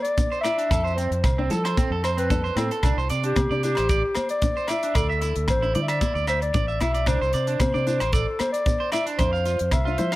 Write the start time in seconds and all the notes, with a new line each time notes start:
0.02 D5, closed hi-hat, shekere
0.18 D4, kick, closed hi-hat, high conga, shekere
0.32 C5, shekere
0.41 D5 E5, cross-stick, closed hi-hat, muted conga, low agogo, shekere
0.45 E4
0.58 D4, closed hi-hat, shekere
0.71 F2 D4 A4, kick, cross-stick, closed hi-hat, muted conga, low agogo, shekere
0.84 C5, shekere
0.95 C4 C5, closed hi-hat, muted conga
1.00 shekere
1.11 F2, closed hi-hat
1.24 C2 C4, kick, cross-stick, closed hi-hat, low agogo, shekere
1.38 C4 D4
1.49 F3 E4 A4, closed hi-hat, low conga, shekere
1.65 C5, cross-stick, closed hi-hat, low agogo, shekere
1.77 C4, kick, closed hi-hat, muted conga, high conga, shekere
1.90 F2 A4
2.04 C5, cross-stick, closed hi-hat, low agogo, shekere
2.17 C4 B4, closed hi-hat, shekere
2.30 D4 A4, kick, closed hi-hat, high conga, low conga, shekere
2.44 C5, shekere
2.56 A2 C4 E4 A4, cross-stick, closed hi-hat, muted conga, high conga, low agogo, shekere
2.71 A4, closed hi-hat, shekere
2.83 C2 D4, kick, cross-stick, closed hi-hat, muted conga, low agogo, shekere
2.97 C2 C5, shekere
3.10 C3 D5, closed hi-hat, muted conga, shekere
3.24 D4 G4, closed hi-hat
3.36 C3 C4, kick, cross-stick, closed hi-hat, high conga, low agogo, shekere
3.50 C3 D4 D5, shekere
3.63 D4 E4 G4, closed hi-hat, shekere
3.75 A1 C5, cross-stick, closed hi-hat, low agogo, shekere
3.89 D5, kick, closed hi-hat, muted conga, shekere
4.15 C5, cross-stick, closed hi-hat, high conga, low agogo, shekere
4.29 D5, closed hi-hat, shekere
4.42 D4, kick, closed hi-hat, high conga, shekere
4.57 C5, shekere
4.68 E4 D5 E5, cross-stick, closed hi-hat, muted conga, low agogo, shekere
4.83 D4, closed hi-hat, shekere
4.95 D2 A4 D5, muted nylon-string guitar stroke, kick, cross-stick, closed hi-hat, muted conga, low agogo, shekere
5.10 E5, shekere
5.22 E4, closed hi-hat, muted conga, shekere
5.36 D2, closed hi-hat
5.48 A1 C4 C5, kick, cross-stick, closed hi-hat, low agogo, shekere
5.62 D4 E4, shekere
5.75 D3 E4 D5, closed hi-hat, low conga
5.82 E5
5.88 D5 E5, cross-stick, closed hi-hat, low agogo, shekere
6.01 E4, kick, closed hi-hat, muted conga, high conga, shekere
6.15 D2 D5, shekere
6.27 C5 E5, cross-stick, closed hi-hat, low agogo, shekere
6.41 D5, muted clean electric guitar stroke, closed hi-hat
6.54 A1 D4 D5, kick, closed hi-hat, high conga, low conga, shekere
6.68 E5, shekere
6.81 B1 E4 E5, cross-stick, closed hi-hat, muted conga, high conga, low agogo, shekere
6.94 D5, closed hi-hat, shekere
7.06 C2 D4 C5, kick, cross-stick, closed hi-hat, muted conga, low agogo, shekere
7.21 C2 C5, shekere
7.33 C3 D5, closed hi-hat, muted conga, shekere
7.47 D4, closed hi-hat
7.60 C3 C4 C5, kick, cross-stick, closed hi-hat, high conga, low agogo, shekere
7.74 C3 D4 D5, shekere
7.87 D4 E4, closed hi-hat, shekere
8.00 A1 C5, cross-stick, closed hi-hat, low agogo, shekere
8.13 A4 D5, kick, closed hi-hat, muted conga, shekere
8.39 C5, cross-stick, closed hi-hat, high conga, low agogo, shekere
8.53 D5, closed hi-hat, shekere
8.66 D4, kick, closed hi-hat, high conga, shekere
8.80 C5
8.92 E4 D5 E5, cross-stick, closed hi-hat, muted conga, low agogo, shekere
9.06 D4, closed hi-hat, shekere
9.18 F2 D4 C5, kick, cross-stick, closed hi-hat, muted conga, low agogo, shekere
9.33 F5, shekere
9.45 F4, closed hi-hat, muted conga, shekere
9.59 F2, closed hi-hat
9.71 C2 C4 E5, kick, cross-stick, closed hi-hat, low agogo, shekere
9.85 D4 F4, shekere
9.98 F3 E4 C5, closed hi-hat, low conga, shekere
10.12 F5, cross-stick, closed hi-hat, low agogo